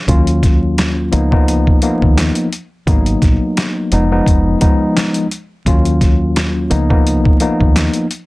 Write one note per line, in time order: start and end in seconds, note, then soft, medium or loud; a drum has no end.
0.08 1.09 D#2 loud
0.08 1.13 F#3 medium
0.08 1.11 A#3 medium
0.08 1.13 C#4 medium
0.08 1.13 F4 loud
0.08 kick loud
0.08 closed hi-hat loud
0.27 closed hi-hat medium
0.43 kick loud
0.43 snare soft
0.43 closed hi-hat medium
0.78 snare loud
0.78 clap medium
0.78 closed hi-hat medium
1.12 1.67 C#2 medium
1.12 1.30 F3 loud
1.12 1.30 A#3 medium
1.12 1.31 B3 medium
1.12 1.31 D#4 loud
1.12 closed hi-hat medium
1.31 1.78 F3 loud
1.31 1.79 A#3 medium
1.31 1.79 B3 medium
1.31 1.79 D#4 loud
1.31 kick loud
1.48 closed hi-hat medium
1.67 kick medium
1.82 2.47 F3 medium
1.82 2.47 A#3 medium
1.82 2.48 B3 medium
1.82 2.48 D#4 loud
1.82 closed hi-hat medium
2.02 2.29 D#2 loud
2.02 kick medium
2.18 snare loud
2.18 clap loud
2.18 closed hi-hat medium
2.35 closed hi-hat medium
2.52 closed hi-hat medium
2.87 3.14 G#1 loud
2.87 3.92 F#3 medium
2.87 3.92 A#3 medium
2.87 3.92 B3 medium
2.87 3.92 D#4 loud
2.87 kick loud
2.87 closed hi-hat loud
3.06 closed hi-hat medium
3.22 3.37 A#1 medium
3.22 kick medium
3.22 snare soft
3.22 closed hi-hat medium
3.57 snare loud
3.57 clap medium
3.57 closed hi-hat loud
3.92 4.19 F1 loud
3.92 4.10 F3 medium
3.92 4.10 G#3 medium
3.92 4.11 B3 medium
3.92 4.11 D#4 loud
3.92 closed hi-hat medium
4.11 4.58 F3 medium
4.11 4.58 G#3 medium
4.11 4.58 B3 medium
4.11 4.58 D#4 loud
4.26 4.54 F1 medium
4.26 kick medium
4.26 closed hi-hat medium
4.60 5.26 F3 medium
4.60 5.26 G#3 medium
4.60 5.26 B3 medium
4.60 5.26 D#4 loud
4.60 kick medium
4.60 closed hi-hat medium
4.97 snare loud
4.97 clap loud
4.97 closed hi-hat loud
5.14 closed hi-hat medium
5.31 closed hi-hat medium
5.66 6.67 D#2 loud
5.66 6.71 F#3 loud
5.66 6.69 A#3 medium
5.66 6.72 C#4 medium
5.66 6.72 F4 loud
5.66 kick loud
5.66 closed hi-hat loud
5.85 closed hi-hat medium
6.01 kick medium
6.01 snare soft
6.01 closed hi-hat medium
6.36 snare loud
6.36 clap medium
6.36 closed hi-hat loud
6.70 7.25 C#2 medium
6.70 6.88 F3 medium
6.70 6.89 A#3 medium
6.70 6.89 B3 medium
6.70 6.90 D#4 loud
6.70 closed hi-hat medium
6.90 7.37 F3 medium
6.90 7.37 A#3 medium
6.90 7.37 B3 medium
6.90 7.37 D#4 loud
6.90 kick medium
7.07 closed hi-hat loud
7.25 kick medium
7.40 8.05 F3 medium
7.40 8.06 A#3 medium
7.40 8.06 B3 medium
7.40 8.06 D#4 loud
7.40 closed hi-hat medium
7.60 7.87 D#2 medium
7.60 kick medium
7.76 snare loud
7.76 clap medium
7.76 closed hi-hat loud
7.93 closed hi-hat medium
8.11 closed hi-hat medium